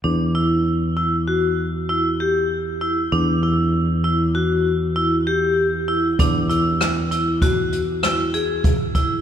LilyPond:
<<
  \new Staff \with { instrumentName = "Vibraphone" } { \time 5/4 \key e \minor \tempo 4 = 98 d'8 e'4 e'8 fis'4 e'8 g'4 e'8 | d'8 e'4 e'8 fis'4 e'8 g'4 e'8 | d'8 e'4 e'8 fis'4 e'8 gis'4 e'8 | }
  \new Staff \with { instrumentName = "Fretless electric bass" } { \clef bass \time 5/4 \key e \minor e,1~ e,4 | e,1~ e,4 | e,1~ e,4 | }
  \new DrumStaff \with { instrumentName = "Drums" } \drummode { \time 5/4 r4 r4 r4 r4 r4 | r4 r4 r4 r4 r4 | <hh bd>8 hh8 <hh ss>8 hh8 <hh bd>8 hh8 <hh ss>8 hh8 <hh bd>8 <hh bd>8 | }
>>